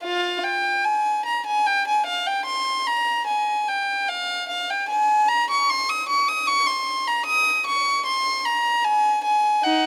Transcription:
0.03 F4 F5
0.43 G5
0.85 G#5
1.25 A#5
1.46 G#5
1.67 G5
1.87 G#5
2.06 F5
2.26 G5
2.46 C6
2.87 A#5
3.27 G#5
3.68 G5
4.08 F5
4.49 F5
4.70 G5
4.89 G#5
5.29 A#5
5.50 C#6
5.70 C6
5.90 D#6
6.09 C#6
6.28 D#6
6.47 C#6
6.67 C6
7.07 A#5
7.26 D#6
7.66 C#6
8.06 C6
8.45 A#5
8.85 G#5
9.24 G#5
9.63 D#4 F#5

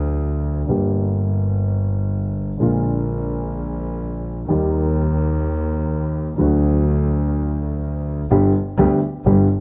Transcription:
Already playing: D2 D3 F#3 A3 F#4
0.67 G1 G2 D3 G3 A#3
0.71 G4
2.58 A#1 A#2 D3 G#3 A#3
2.62 F4
4.48 D#2 D#3 G3 A#3 G4
6.37 D2 D3 F#3 A3 F#4
8.30 G1 G2 D3 G3 B3 G4
8.78 D2 D3 G3 B3 G4
9.25 G1 G2 D3 G3 B3 G4

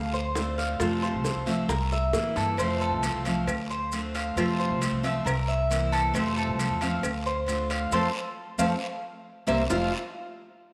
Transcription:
Already playing: D2 F5
0.13 C5, high bongo, maracas
0.35 D3 A3 C4 F4, high bongo, low bongo, short guiro, maracas
0.58 F5, high bongo, short guiro, maracas
0.80 F2 C3 F3 A3 C4 F4, high bongo, long guiro, maracas
1.02 C5, high bongo, maracas
1.13 C2
1.24 F3 A3 C4 F4, high bongo, short guiro, maracas
1.35 C2
1.46 F3 A3 C4 F4 E5, short guiro, maracas
1.69 C2 A#4, muted steel-string acoustic guitar stroke, high bongo, long guiro, maracas
1.92 E5, high bongo, maracas
2.13 A2 E3 A#3 C4 E4, high bongo, short guiro, maracas
2.36 G2 A4, low bongo, short guiro, maracas
2.57 F2 C3 F3 A3 C4 F4 C5, cowbell, long guiro, maracas
2.81 A4, maracas
2.91 C2
3.03 F3 A3 C4 F4, cowbell, short guiro, maracas
3.13 C2
3.25 F3 A3 C4 F4 F5, cowbell, short guiro, maracas
3.47 D2, muted steel-string acoustic guitar stroke, cowbell, long guiro, maracas
3.70 C5, maracas
3.92 D3 A3 C4 F4, cowbell, short guiro, maracas
4.14 F5, cowbell, short guiro, maracas
4.36 F2 C3 F3 A3 C4 F4, cowbell, long guiro, maracas
4.59 C5, maracas
4.70 C2
4.81 F3 A3 C4 F4, cowbell, short guiro, maracas
4.91 C2
5.03 F3 A3 C4 F4 E5, cowbell, short guiro, maracas
5.25 C2 A#4, muted steel-string acoustic guitar stroke, cowbell, long guiro, maracas
5.48 E5, maracas
5.70 E3 A#3 C4 E4, cowbell, short guiro, maracas
5.92 A4, cowbell, short guiro, maracas
6.14 F2 C3 F3 A3 C4 F4 C5, cowbell, long guiro, maracas
6.37 A4, maracas
6.47 C2
6.59 F3 A3 C4 F4, cowbell, short guiro, maracas
6.70 E2
6.81 F3 A3 C4 F4 F5, cowbell, short guiro, maracas
7.03 D2, muted steel-string acoustic guitar stroke, cowbell, long guiro, maracas
7.26 C5, maracas
7.46 D3 A3 C4 F4, cowbell, short guiro, maracas
7.70 F5, cowbell, short guiro, maracas
7.91 F2 F3 A3 C4 A4 C5 F5, cowbell, long guiro, maracas
8.58 F2 F3 A3 C4 A4 C5 F5, cowbell, long guiro, maracas
9.47 C2 G3 A#3 C4 A#4 C5 E5, cowbell, long guiro, maracas
9.70 F1 F2 C3 F3 A3 C4 F4 C5 F5, low bongo, long guiro, maracas

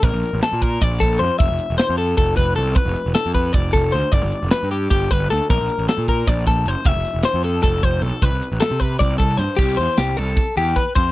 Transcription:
0.02 A#1 A#4, kick, closed hi-hat
0.14 A#1
0.23 snare, closed hi-hat
0.33 A1
0.42 A4, snare, closed hi-hat
0.53 A#2
0.62 A#4, kick, closed hi-hat
0.81 A#1 D5, kick, snare, closed hi-hat
1.00 A#1 A4, kick, snare, closed hi-hat
1.19 F2 C5, closed hi-hat
1.39 F1 E5, kick, closed hi-hat
1.50 F1
1.59 closed hi-hat
1.70 E1
1.78 C5, snare, closed hi-hat
1.89 F2
1.98 A4, closed hi-hat
2.17 F1 A4, kick, closed hi-hat
2.37 F1 B4, kick, snare, closed hi-hat
2.56 C2 A4, closed hi-hat
2.75 B4, kick, closed hi-hat
2.86 F1
2.95 closed hi-hat
3.06 E1
3.15 A4, snare, closed hi-hat
3.26 F2
3.34 B4, kick, closed hi-hat
3.53 F1 D5, kick, closed hi-hat
3.73 F1 A4, kick, snare, closed hi-hat
3.92 D2 C5, snare, closed hi-hat
4.12 G1 D5, kick, closed hi-hat
4.23 G1
4.32 closed hi-hat
4.43 F1
4.51 B4, snare, closed hi-hat
4.63 G2
4.71 G4, snare, closed hi-hat
4.90 G1 G4, kick, closed hi-hat
5.11 G1 B4, kick, snare, closed hi-hat
5.30 D2 A4, snare, closed hi-hat
5.50 A#1 A#4, kick, closed hi-hat
5.60 A#1
5.69 closed hi-hat
5.79 A1
5.88 A4, snare, closed hi-hat
5.98 A#2
6.08 A#4, kick, closed hi-hat
6.27 A#1 D5, kick, snare, closed hi-hat
6.46 A#1 A4, kick, snare, closed hi-hat
6.65 F#1 C5, closed hi-hat
6.84 F1 E5, kick, closed hi-hat
6.95 F1
7.05 snare, closed hi-hat
7.14 E1
7.23 C5, snare, closed hi-hat
7.34 F2
7.43 A4, snare, closed hi-hat
7.63 F1 A4, kick, snare, closed hi-hat
7.83 F1 C5, kick, closed hi-hat
8.02 B1 A4, closed hi-hat
8.22 C2 B4, kick, closed hi-hat
8.32 C2
8.42 closed hi-hat
8.52 A1
8.61 A4, snare, closed hi-hat
8.71 C3
8.80 B4, kick, closed hi-hat
8.99 C2 D5, kick, closed hi-hat
9.18 C2 A4, kick, closed hi-hat
9.38 G2 C5, closed hi-hat
9.57 C2 G4, kick, crash
9.77 E2 C5, closed hi-hat
9.97 C2 G4, snare, closed hi-hat
10.17 C2 A4, closed hi-hat
10.37 kick, closed hi-hat
10.56 E2 G4, snare, closed hi-hat
10.76 B4, kick, snare, closed hi-hat
10.95 F2 C5, kick, closed hi-hat

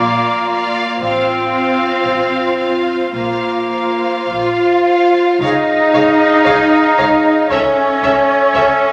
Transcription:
Already playing: A#3 F4 D5 F5
0.00 A#1
0.49 F4 D5 F5
1.00 A1 C4 F4 C5 F5
1.51 F4 C5 F5
2.05 A1
2.58 F4 C5 F5
3.12 A#1 A#3 F4 C5 F5
3.70 F4 C5 F5
4.29 A#1 F4 F5
4.85 F4 C5 F5
5.40 C#2 D#4 G#4 C#5 D#5 F5
5.94 C#2 G#4 C#5 F5
6.45 C#2 G#4 C#5 F5
6.98 C#2 G#4 C#5 F5
7.50 C#2 C#4 A4 C#5 E5
8.03 C#2 A4 C#5 E5
8.54 C#2 A4 C#5 E5

